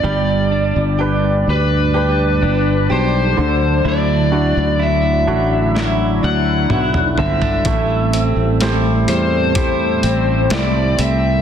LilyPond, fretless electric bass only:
\new Staff \with { instrumentName = "Fretless electric bass" } { \clef bass \time 4/4 \key g \major \tempo 4 = 63 g,,8. g,,8. d,4 g,,8 b,,8 d,8 | d,8. d,8. a,,4 d,8 b,,8 g,,8 | a,,8. a,,8. e,4 a,,8 c,8 c,8 | }